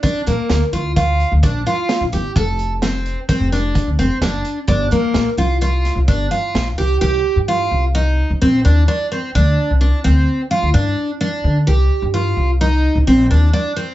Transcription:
<<
  \new Staff \with { instrumentName = "Twelve-string acoustic guitar" } { \time 5/4 \key c \dorian \tempo 4 = 129 d'8 bes4 f'8 f'4 d'8 f'4 g'8 | a'4 c'4 c'8 d'4 c'8 d'4 | d'8 bes4 f'8 f'4 d'8 f'4 g'8 | g'4 f'4 ees'4 c'8 d'8 d'8 c'8 |
d'4 d'8 c'4 f'8 d'4 d'4 | g'4 f'4 ees'4 c'8 d'8 d'8 c'8 | }
  \new Staff \with { instrumentName = "Upright bass" } { \clef bass \time 5/4 \key c \dorian r8 bes,16 r16 d,16 r16 d,4~ d,16 d,16 bes,,8 r8. bes,,16 g,,16 r16 | f,,2 r16 f,,4 d,16 f,,16 r16 fis,,8 r8 | g,,8 g,16 r16 bes,,16 r16 c,4~ c,16 c,16 g,,8 r8 bes,,8 c,8 | c,8 r16 g,8. c,4~ c,16 c,16 bes,,8 ees,8 r4 |
d,8 r16 c,8 r16 d,8 r8. d,16 g,8 r4 d8 | c,8 r16 g,8. c,4~ c,16 c,16 bes,,8 ees,8 r4 | }
  \new DrumStaff \with { instrumentName = "Drums" } \drummode { \time 5/4 <hh bd>8 hh8 <hh sn>8 hh8 <hh bd>8 hh8 <hh bd>8 hh8 <hh sn>8 hh8 | <hh bd>8 hh8 <hh sn>8 hh8 <hh bd>8 <hh sn>8 <hh bd>8 hh8 <hh sn>8 hh8 | <hh bd>8 hh8 <hh sn>8 hh8 hh8 <hh sn>8 <hh bd>8 hh8 <hh sn>8 hh8 | r4 r4 r4 r4 r4 |
r4 r4 r4 r4 r4 | r4 r4 r4 r4 r4 | }
>>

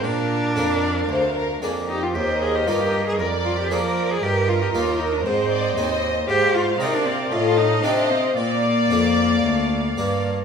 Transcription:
<<
  \new Staff \with { instrumentName = "Violin section" } { \time 4/4 \key bes \mixolydian \tempo 4 = 115 f''2.~ f''8 r8 | ees''2 d''4 d''4 | ees''2 ees''2 | f''2 f''2 |
f''2.~ f''8 r8 | }
  \new Staff \with { instrumentName = "Violin section" } { \time 4/4 \key bes \mixolydian bes'4 bes'8 d''8 c''8 bes'8 aes'8 g'8 | c''4 bes'4 d''4 c''4 | bes'2 c''8 d''8 ees''4 | c''4 bes'4 a'4 c''4 |
d''2.~ d''8 r8 | }
  \new Staff \with { instrumentName = "Viola section" } { \time 4/4 \key bes \mixolydian bes'2.~ bes'8 r8 | bes'2 bes'4 bes'4 | bes'2 c''2 | c''4 d''4 ees''2 |
d''2.~ d''8 r8 | }
  \new Staff \with { instrumentName = "Cello" } { \time 4/4 \key bes \mixolydian d'2. r8 ees'16 f'16 | g'8 aes'16 g'16 f'16 g'8 aes'16 bes'8 f'16 g'16 aes'16 bes'8 aes'16 | g'8 f'16 g'16 f'8 ees'16 d'16 c'4. r8 | g'8 f'8 ees'16 d'16 c'8 f'8 ees'8 d'8 c'8 |
bes2.~ bes8 r8 | }
  \new Staff \with { instrumentName = "Harpsichord" } { \clef bass \time 4/4 \key bes \mixolydian bes,4 <f, bes d'>4 d,4 <f, bes d'>4 | ees,4 <g, bes ees'>4 f,4 <f bes d'>4 | g,4 <ees, bes ees'>4 aes,4 <ees, c' ees'>4 | aes,4 <c c' f'>4 a,4 <c c' ees'>4 |
bes,4 <f, bes d'>4 d,4 <g, bes d'>4 | }
  \new Staff \with { instrumentName = "Cello section" } { \clef bass \time 4/4 \key bes \mixolydian bes,4 f,4 d,4 f,4 | ees,4 g,4 f,4 f4 | g,4 ees,4 aes,4 ees,4 | aes,4 c4 a,4 c4 |
bes,4 f,4 d,4 g,4 | }
>>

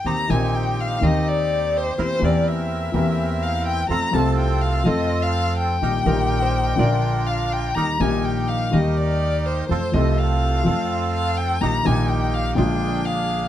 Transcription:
<<
  \new Staff \with { instrumentName = "Violin" } { \time 4/4 \key ees \major \tempo 4 = 124 bes''8 aes''8 g''8 f''8 ees''8 d''4 c''8 | c''8 d''8 e''2 f''8 g''8 | bes''8 a''8 g''8 f''8 ees''8. f''8. g''8~ | g''2. f''8 g''8 |
bes''8 aes''8 g''8 f''8 ees''8 d''4 c''8 | c''8 ees''8 f''2 f''8 g''8 | bes''8 aes''8 g''8 f''8 g''4 f''4 | }
  \new Staff \with { instrumentName = "Hollow-body jazz guitar" } { \time 4/4 \key ees \major r1 | r1 | r1 | r8 bes'8. c''8. d''8. r4 r16 |
r1 | r1 | r1 | }
  \new Staff \with { instrumentName = "Bandoneon" } { \time 4/4 \key ees \major <c' ees' g'>8 <c' ees' g'>4. <c' ees' g'>2 | <c' e' bes'>8 <c' e' bes'>4. <c' e' bes'>2 | <c' f' a'>8 <c' f' a'>4. <c' f' a'>2 | <ees' g' bes'>8 <ees' g' bes'>4. <d' f' bes'>2 |
<ees' g' bes'>8 <ees' g' bes'>4. <ees' g' bes'>2 | <c' f' a'>8 <c' f' a'>4. <c' f' a'>2 | <bes ees' g'>8 <bes ees' g'>4. <bes d' aes'>2 | }
  \new Staff \with { instrumentName = "Grand piano" } { \clef bass \time 4/4 \key ees \major <ees, ees bes c' g'>8 <bes,, bes, ees bes c' g'>4. <ees, ees bes c' g'>2 | <e, e bes c' g'>8 <e, e bes c' g'>4. <e, e bes c' g'>2 | <f, f a c' a'>8 <c, c f a c' a'>4. <f, f a c' a'>2 | <bes,, bes, ees g bes g'>8 <bes,, bes, ees g bes g'>4. <bes,, bes, d f bes f'>2 |
<ees, ees g bes g'>8 <bes,, bes, ees g bes g'>4. <ees, ees g bes g'>2 | <f, f a c' a'>8 <c, c f a c' a'>4. <f, f a c' a'>2 | <bes,, bes, ees g bes g'>8 <bes,, bes, ees g bes g'>4. <bes,, bes, d aes bes f'>2 | }
  \new Staff \with { instrumentName = "Upright bass" } { \clef bass \time 4/4 \key ees \major ees,8 bes,,4. ees,2 | e,8 e,4. e,2 | f,8 c,4. f,2 | bes,,8 bes,,4. bes,,2 |
ees,8 bes,,4. ees,2 | f,8 c,4. f,2 | bes,,8 bes,,4. bes,,2 | }
>>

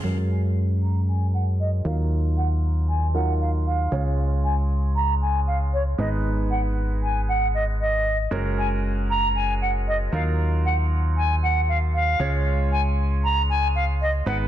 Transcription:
<<
  \new Staff \with { instrumentName = "Flute" } { \time 4/4 \key fis \major \tempo 4 = 116 r8 gis''16 r8. ais''8 gis''8 fis''16 r16 dis''16 r16 eis''16 r16 | r8 fis''16 r8. gis''8 fis''8 eis''16 r16 eis''8. r16 | r8 gis''16 r8. ais''8 gis''8 eis''16 r16 cis''16 r16 dis''16 r16 | r8 fis''16 r8. gis''8 fis''8 dis''16 r16 dis''8. r16 |
r8 gis''16 r8. ais''8 gis''8 fis''16 r16 dis''16 r16 eis''16 r16 | r8 fis''16 r8. gis''8 fis''8 eis''16 r16 eis''8. r16 | r8 gis''16 r8. ais''8 gis''8 eis''16 r16 dis''16 r16 fis''16 r16 | }
  \new Staff \with { instrumentName = "Grand piano" } { \time 4/4 \key fis \major <gis cis' fis' ais'>2.~ <gis cis' fis' ais'>8 <fis dis' eis' ais'>8~ | <fis dis' eis' ais'>2 <fis dis' eis' ais'>4. <gis cis' eis' cis''>8~ | <gis cis' eis' cis''>2.~ <gis cis' eis' cis''>8 <gis b dis' b'>8~ | <gis b dis' b'>2.~ <gis b dis' b'>8 r8 |
<gis cis' fis' ais'>2.~ <gis cis' fis' ais'>8 <fis dis' eis' ais'>8~ | <fis dis' eis' ais'>2.~ <fis dis' eis' ais'>8 <gis cis' eis' cis''>8~ | <gis cis' eis' cis''>2.~ <gis cis' eis' cis''>8 <gis b dis' b'>8 | }
  \new Staff \with { instrumentName = "FM bass" } { \clef bass \time 4/4 \key fis \major fis,2.~ fis,8 dis,8~ | dis,2.~ dis,8 cis,8~ | cis,2.~ cis,8 gis,,8~ | gis,,1 |
fis,,2.~ fis,,8 dis,8~ | dis,2.~ dis,8 cis,8~ | cis,2.~ cis,8 gis,,8 | }
>>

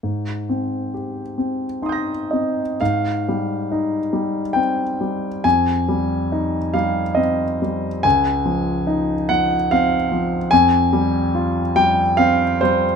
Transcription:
<<
  \new Staff \with { instrumentName = "Grand piano" } { \time 3/4 \key aes \major \tempo 4 = 70 << { r2 <c''' ees''' g''' bes'''>4 | r2. | r2. | r2. |
r2. | } \\ { r2 r8 ees''8 | f''2 g''4 | aes''4. f''8 ees''8 r8 | aes''4. ges''8 f''4 |
aes''4. g''8 f''8 c''8 | } >> }
  \new Staff \with { instrumentName = "Grand piano" } { \clef bass \time 3/4 \key aes \major aes,8 c'8 g'8 c'8 ees'8 c'8 | aes,8 g8 ees'8 g8 c'8 g8 | f,8 g8 ees'8 g8 c'8 g8 | des,8 f8 ees'8 f8 c'8 f8 |
f,8 g8 f'8 g8 c'8 g8 | }
>>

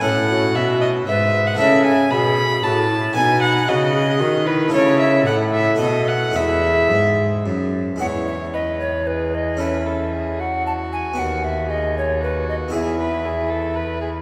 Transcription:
<<
  \new Staff \with { instrumentName = "Violin" } { \time 3/4 \key fis \dorian \tempo 4 = 115 fis''4 e''8 dis''8 e''8. fis''16 | \key e \major e''8 gis''8 b''4 a''4 | gis''8 fis''8 dis''4. b'8 | cis''8 e''8 fis''8 e''8 dis''8 fis''8 |
e''2 r4 | cis''4 b'4 gis'4 | b'8 a'8 gis'8 fis'4.~ | fis'4 gis'4 fis'4 |
gis'8 b'8 gis'8 a'8 b'8 gis'8 | }
  \new Staff \with { instrumentName = "Recorder" } { \time 3/4 \key fis \dorian a'8 fis'4. b'4 | \key e \major a'8 r8 gis'4 fis'8 e'8 | dis'4 fis'8 gis'8 fis'8 e'8~ | e'4 a'2 |
gis'2~ gis'8 r8 | fis''8 e''8 dis''8 cis''8 b'8 dis''8 | e''4. fis''8 a''8 gis''8 | fis''8 e''8 dis''8 cis''8 b'8 dis''8 |
e''2~ e''8. r16 | }
  \new Staff \with { instrumentName = "Harpsichord" } { \time 3/4 \key fis \dorian <a cis' a'>2. | \key e \major <a e' a'>2. | <fis' b'>2. | <a e' a'>2 <a fis' b'>4 |
<gis e' b'>2. | <gis e' b'>2. | <cis' a'>2. | <b fis'>2. |
<b e' gis'>2. | }
  \new Staff \with { instrumentName = "Harpsichord" } { \clef bass \time 3/4 \key fis \dorian a,4 b,4 gis,4 | \key e \major cis4 b,4 a,4 | b,4 cis4 dis4 | cis4 a,4 b,4 |
e,4 gis,4 fis,4 | e,2.~ | e,2. | dis,2. |
e,2. | }
  \new Staff \with { instrumentName = "Cello" } { \clef bass \time 3/4 \key fis \dorian a,4 b,4 gis,4 | \key e \major cis4 b,4 a,4 | b,4 cis4 dis4 | cis4 a,4 b,4 |
e,4 gis,4 fis,4 | e,2.~ | e,2. | dis,2. |
e,2. | }
>>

